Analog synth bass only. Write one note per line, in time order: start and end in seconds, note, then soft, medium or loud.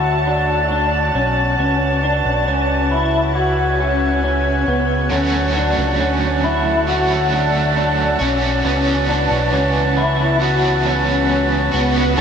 0.00 1.11 D2 medium
1.15 1.57 B1 medium
1.59 2.22 C#2 medium
2.25 2.46 B1 medium
2.47 4.64 C#2 medium
4.67 5.09 C#2 medium
5.11 5.75 D2 medium
5.78 5.99 C#2 medium
5.99 8.16 D2 medium
8.20 8.62 B1 medium
8.65 9.28 C#2 medium
9.31 9.52 B1 medium
9.53 11.69 C#2 loud
11.74 12.16 C#2 medium
12.18 12.21 D2 loud